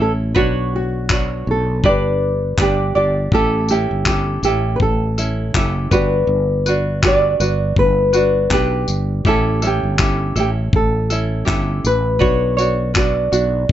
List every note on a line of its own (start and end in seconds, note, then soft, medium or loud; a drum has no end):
0.00 0.35 A1 medium
0.00 0.36 C#4 soft
0.00 0.35 E4 soft
0.00 0.36 A4 soft
0.00 0.11 A4 medium
0.35 1.43 B1 loud
0.35 1.10 D4 medium
0.35 1.10 F#4 medium
0.35 0.74 F#4 medium
0.35 1.08 B4 medium
0.35 1.10 C#5 medium
0.35 kick loud
0.76 1.44 F#4 medium
1.09 1.84 D4 medium
1.09 1.84 F#4 medium
1.09 1.83 B4 medium
1.09 1.85 C#5 medium
1.09 kick loud
1.09 clap loud
1.47 1.81 B1 medium
1.47 1.87 A4 medium
1.83 2.54 G1 medium
1.83 2.57 D4 medium
1.83 2.59 G4 medium
1.83 2.56 B4 medium
1.83 2.59 D5 medium
1.83 kick loud
1.89 2.94 B4 medium
2.58 2.92 G1 medium
2.58 2.95 D4 medium
2.58 2.95 G4 medium
2.58 2.95 B4 medium
2.58 2.94 D5 medium
2.58 kick medium
2.58 clap loud
2.62 3.36 G4 medium
2.95 3.30 G1 medium
2.95 3.33 D4 soft
2.95 3.32 G4 soft
2.95 3.32 D5 medium
3.32 3.87 A1 loud
3.32 3.70 C#4 medium
3.32 3.70 E4 medium
3.32 3.70 G4 medium
3.32 3.69 A4 medium
3.32 3.71 A4 loud
3.32 kick loud
3.69 4.08 E4 medium
3.69 4.40 G4 medium
3.69 4.07 A4 medium
3.69 tambourine medium
3.73 4.07 C#4 soft
3.91 4.39 G1 medium
4.06 4.44 C#4 medium
4.06 4.45 E4 medium
4.06 4.44 G4 medium
4.06 kick loud
4.06 clap loud
4.10 4.44 A4 medium
4.43 4.77 A1 medium
4.43 4.76 G4 loud
4.43 5.17 A4 soft
4.43 tambourine medium
4.47 5.19 C#4 soft
4.47 5.18 E4 soft
4.76 5.50 A1 medium
4.76 4.81 B4 medium
4.76 kick loud
4.82 5.51 A4 medium
5.18 5.54 C#4 soft
5.18 5.55 E4 medium
5.18 5.55 A4 medium
5.18 tambourine medium
5.54 5.88 F#1 medium
5.54 5.92 C#4 medium
5.54 5.92 E4 medium
5.54 5.91 G4 medium
5.54 5.91 A4 medium
5.54 kick loud
5.54 clap loud
5.91 6.25 G1 medium
5.91 6.66 D4 medium
5.91 6.66 F#4 medium
5.91 6.71 G4 medium
5.91 6.65 B4 medium
5.91 7.06 B4 medium
5.91 kick medium
5.91 tambourine medium
6.27 7.35 G1 loud
6.66 7.02 D4 soft
6.66 7.03 F#4 soft
6.66 7.03 B4 medium
6.66 tambourine medium
7.02 7.40 D4 medium
7.02 7.40 F#4 medium
7.02 7.39 G4 medium
7.02 7.39 B4 medium
7.02 kick loud
7.02 clap loud
7.07 7.79 D5 medium
7.40 7.74 G1 medium
7.40 8.15 D4 soft
7.40 8.13 F#4 soft
7.40 8.12 B4 soft
7.40 tambourine medium
7.76 8.46 G1 medium
7.76 8.53 B4 loud
7.76 kick loud
8.13 8.50 D4 soft
8.13 8.51 F#4 medium
8.13 8.50 B4 medium
8.13 tambourine medium
8.50 8.85 B1 medium
8.50 9.25 D4 medium
8.50 9.25 G4 medium
8.50 9.28 G4 medium
8.50 9.26 B4 medium
8.50 kick loud
8.50 clap loud
8.88 9.22 G1 medium
8.88 tambourine medium
9.25 9.80 A1 loud
9.25 9.62 C#4 medium
9.25 9.62 E4 medium
9.25 9.62 G4 medium
9.25 9.61 A4 medium
9.25 9.65 A4 medium
9.25 kick loud
9.62 9.98 C#4 soft
9.62 10.00 E4 medium
9.62 9.99 A4 medium
9.62 tambourine medium
9.67 10.38 G4 medium
9.83 10.31 G1 medium
9.99 10.36 C#4 medium
9.99 10.36 E4 medium
9.99 10.36 G4 medium
9.99 10.34 A4 medium
9.99 kick loud
9.99 clap loud
10.36 10.70 A1 medium
10.36 11.12 C#4 soft
10.36 11.11 E4 soft
10.36 10.49 G4 medium
10.36 11.09 A4 medium
10.36 tambourine medium
10.73 11.43 A1 loud
10.73 11.45 A4 medium
10.73 kick loud
11.10 11.45 C#4 soft
11.10 11.45 E4 soft
11.10 11.47 A4 medium
11.10 tambourine medium
11.45 11.81 G1 medium
11.45 12.19 C#4 medium
11.45 12.20 E4 medium
11.45 12.19 G4 medium
11.45 12.20 A4 medium
11.45 kick loud
11.45 clap loud
11.84 12.18 A1 medium
11.84 12.98 B4 loud
11.84 tambourine medium
12.19 13.29 B1 loud
12.19 12.57 D4 medium
12.19 12.58 F#4 medium
12.19 12.57 B4 medium
12.19 12.56 C#5 medium
12.19 kick loud
12.57 12.94 D4 soft
12.57 12.94 F#4 soft
12.57 12.93 C#5 medium
12.57 tambourine medium
12.94 13.32 D4 medium
12.94 13.31 F#4 medium
12.94 13.32 B4 medium
12.94 kick loud
12.94 clap loud
12.98 13.67 D5 medium
13.32 13.67 B1 medium
13.32 13.72 D4 soft
13.32 13.72 F#4 soft
13.32 tambourine medium